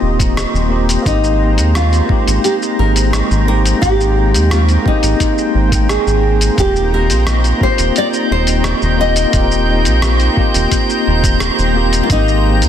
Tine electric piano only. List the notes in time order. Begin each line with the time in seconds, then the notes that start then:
Already playing: A#3 C4 F4 G4
0.69 A#3 C4 F4 G4
1.02 A#3 C4
1.06 D#4 G4
2.06 A#3 C4
2.10 D#4 G4
3.46 A#3 C4 D#4 G4
3.79 A#3 C4
3.83 D#4 G4
4.82 A#3 C4
4.86 D#4 G4
5.69 A#3 C4
5.73 D#4 G5
6.55 A#3 C4 F4
6.62 G4
7.58 A#3 C4
7.62 F4 G4
8.97 A#3 C4 F4 G4
9.30 A#3 C4
9.34 F4 G4
10.33 A#3 C4
10.38 F4 G4
11.74 A#3 C4 F4 G4
12.06 A#3 C4
12.13 G4